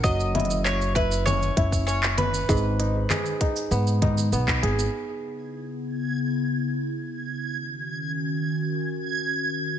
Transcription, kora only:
\new Staff \with { instrumentName = "Kora" } { \time 4/4 \key cis \dorian \tempo 4 = 98 fis8 e'4 e'8 cis'8 e'8 cis'4 | gis,8 dis'8 gis'8 dis'8 b8 dis'8 b8 gis'8 | r1 | r1 | }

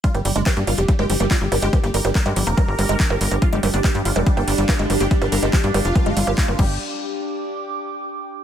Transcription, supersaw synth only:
\new Staff \with { instrumentName = "Supersaw synth" } { \clef bass \time 4/4 \key g \minor \tempo 4 = 142 f'16 g16 g16 d'16 g16 g16 f'16 g16 g16 g'16 g16 g16 f'16 g16 g16 g'16 | g16 g16 bes'16 g16 bes'16 g16 g16 bes'2 r16 | f'16 g16 g16 d'16 g16 g16 f'16 g16 g16 g'16 g16 g16 f'16 g16 g16 g'16 | g16 g16 bes'16 g16 g'16 g16 g16 f'4.~ f'16 g'8 |
r1 | }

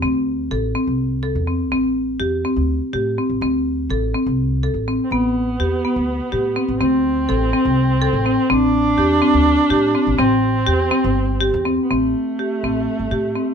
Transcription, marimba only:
\new Staff \with { instrumentName = "Marimba" } { \time 7/8 \key a \minor \tempo 4 = 124 c'4 a'8 c'4 a'8 c'8 | c'4 g'8 c'4 g'8 c'8 | c'4 a'8 c'4 a'8 c'8 | b4 g'8 b4 g'8 c'8 |
c'4 a'8 c'4 a'8 c'8 | c'4 g'8 c'4 g'8 c'8 | c'4 g'8 c'4 g'8 c'8 | c'4 g'8 c'4 g'8 c'8 | }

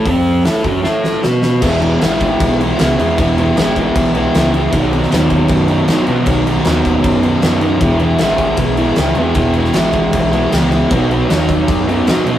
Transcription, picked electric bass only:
\new Staff \with { instrumentName = "Picked electric bass" } { \clef bass \time 4/4 \key e \lydian \tempo 4 = 155 f,4 a,8 fis,8 a,4 b,4 | e,,4 gis,,4 b,,4 cis,8 e,8 | e,,4 gis,,4 b,,4 cis,4 | b,,4 dis,4 fis,4 gis,8 b,8 |
b,,4 dis,4 fis,4 fis,4 | e,,4 gis,,4 b,,4 cis,8 e,8 | e,,4 gis,,4 b,,4 cis,4 | b,,4 dis,4 fis,4 gis,8 b,8 | }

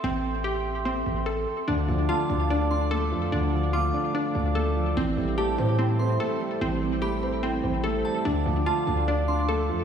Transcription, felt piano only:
\new Staff \with { instrumentName = "Felt piano" } { \time 4/4 \key d \dorian \tempo 4 = 146 r1 | d8 f8 a8 d'8 d''8 d'8 a8 f8 | d8 f8 a8 d'8 d''8 d'8 a8 f8 | e8 g8 a8 c'8 e'8 c'8 a8 g8 |
e8 g8 a8 c'8 e'8 c'8 a8 g8 | d8 f8 a8 d'8 d''8 d'8 a8 f8 | }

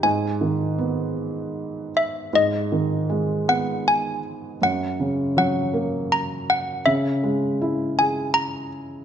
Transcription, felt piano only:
\new Staff \with { instrumentName = "Felt piano" } { \clef bass \time 3/4 \key gis \minor \tempo 4 = 80 gis,8 dis8 b2 | gis,8 dis8 gis8 b4. | fis,8 cis8 fis8 ais4. | cis8 gis8 e'8 gis'4. | }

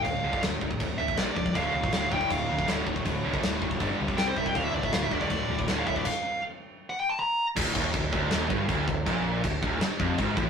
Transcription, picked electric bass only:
\new Staff \with { instrumentName = "Picked electric bass" } { \clef bass \time 4/4 \key d \minor \tempo 4 = 160 d,,8 cis,8 d,,8 d,,8 d,,8 d,,8 bes,,8 cis,8 | d,,8 cis,8 d,,8 d,,8 d,,8 d,,8 d,,8 d,,8 | d,,8 cis,8 d,,8 d,,8 g,,8 cis,8 c,8 c,8 | d,,8 cis,8 d,,8 d,,8 d,,8 d,,8 d,,8 cis,8 |
r1 | d,,8 ees,,8 d,,8 d,,8 ees,,8 g,,8 d,,8 d,,8 | bes,,4 d,,8 d,,8 r8 f,,8 gis,,8 a,,8 | }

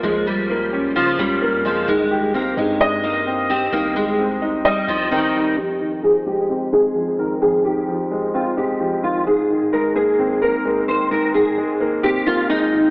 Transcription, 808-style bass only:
\new Staff \with { instrumentName = "808-style bass" } { \clef bass \time 4/4 \key f \minor \tempo 4 = 130 des,2 des8 des,8. f,8. | c,4. g,2~ g,8 | c,2~ c,8 c,4 r8 | r1 |
r1 | r1 | r1 | }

